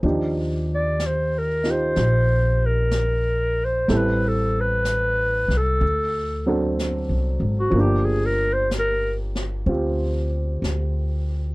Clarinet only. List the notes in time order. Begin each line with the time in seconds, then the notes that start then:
0.75 D5
1.06 C5
1.38 A#4
1.71 C5
2.66 A#4
3.65 C5
3.97 B4
4.28 A4
4.60 B4
5.57 A4
7.59 F#4
7.81 G4
8.05 G#4
8.26 A#4
8.53 C5
8.79 A#4